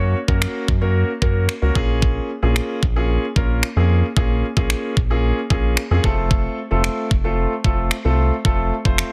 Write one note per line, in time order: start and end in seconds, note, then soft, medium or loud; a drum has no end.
0.00 0.14 F#2 loud
0.00 0.16 A#3 medium
0.00 0.16 C#4 medium
0.00 0.16 F#4 medium
0.00 0.16 C#5 loud
0.28 0.46 F#2 medium
0.28 0.65 A#3 medium
0.28 0.65 C#4 medium
0.28 0.65 F#4 medium
0.28 0.66 A#4 medium
0.28 kick medium
0.42 finger snap loud
0.68 1.04 F#2 loud
0.68 kick medium
0.81 1.09 A#3 medium
0.81 1.09 C#4 medium
0.81 1.10 F#4 medium
0.81 1.10 A#4 medium
1.22 1.48 F#2 medium
1.22 1.50 A#3 medium
1.22 1.50 C#4 medium
1.22 1.50 F#4 medium
1.22 1.50 A#4 medium
1.22 kick medium
1.49 finger snap loud
1.62 1.71 C#2 medium
1.62 1.74 A#3 medium
1.62 1.74 C#4 medium
1.62 1.75 F#4 medium
1.62 1.76 A#4 medium
1.75 2.20 A#1 loud
1.75 2.29 A#3 medium
1.75 2.29 C#4 medium
1.75 2.29 F4 medium
1.75 2.29 G#4 loud
1.75 kick medium
2.02 kick loud
2.42 2.60 A#1 medium
2.42 2.80 A#3 medium
2.42 2.80 C#4 medium
2.42 2.80 F4 medium
2.42 2.80 G#4 medium
2.56 finger snap loud
2.83 3.18 A#1 loud
2.83 kick medium
2.96 3.24 A#3 medium
2.96 3.24 C#4 medium
2.96 3.24 F4 medium
2.96 3.24 G#4 medium
3.36 3.63 A#1 medium
3.36 3.64 A#3 medium
3.36 3.64 C#4 medium
3.36 3.64 F4 medium
3.36 3.64 A#4 medium
3.36 kick medium
3.63 finger snap loud
3.76 4.03 F2 loud
3.76 4.04 A#3 medium
3.76 4.05 C#4 medium
3.76 4.05 F4 medium
3.76 4.05 G#4 medium
4.16 4.43 A#1 loud
4.16 4.44 A#3 medium
4.16 4.45 C#4 medium
4.16 4.45 F4 medium
4.16 4.45 G#4 medium
4.16 kick loud
4.57 4.74 A#1 medium
4.57 4.94 A#3 medium
4.57 4.94 C#4 medium
4.57 4.94 F4 medium
4.57 4.94 G#4 medium
4.57 kick medium
4.70 finger snap loud
4.97 5.32 A#1 loud
4.97 kick loud
5.10 5.38 A#3 medium
5.10 5.38 C#4 medium
5.10 5.38 F4 medium
5.10 5.38 G#4 medium
5.50 5.77 A#1 medium
5.50 5.78 A#3 medium
5.50 5.78 C#4 medium
5.50 5.79 F4 medium
5.50 5.79 G#4 medium
5.50 kick medium
5.77 finger snap loud
5.91 6.00 F2 loud
5.91 6.04 A#3 medium
5.91 6.04 C#4 medium
5.91 6.03 F4 medium
5.91 6.04 G#4 medium
6.04 6.48 F1 loud
6.04 6.58 A3 medium
6.04 6.58 C4 medium
6.04 6.58 F4 medium
6.04 6.58 A4 loud
6.04 kick medium
6.31 kick loud
6.71 6.89 F1 medium
6.71 7.08 A3 medium
6.71 7.08 C4 medium
6.71 7.08 F4 medium
6.71 7.08 A4 medium
6.84 finger snap loud
7.11 7.46 F1 loud
7.11 kick loud
7.24 7.52 A3 medium
7.24 7.53 C4 medium
7.24 7.53 F4 medium
7.24 7.53 A4 medium
7.64 7.91 F1 medium
7.64 7.93 A3 medium
7.64 7.93 C4 medium
7.64 7.93 F4 medium
7.64 7.93 A4 medium
7.64 kick medium
7.91 finger snap loud
8.04 8.31 C2 medium
8.04 8.33 A3 medium
8.04 8.33 C4 medium
8.04 8.33 F4 medium
8.04 8.33 A4 medium
8.45 8.71 F1 loud
8.45 8.73 A3 medium
8.45 8.73 C4 medium
8.45 8.73 F4 medium
8.45 8.73 A4 loud
8.45 kick loud
8.85 9.03 F1 medium
8.85 9.12 A3 medium
8.85 9.12 C4 medium
8.85 9.12 F4 medium
8.85 9.12 C5 medium
8.85 kick medium
8.98 finger snap loud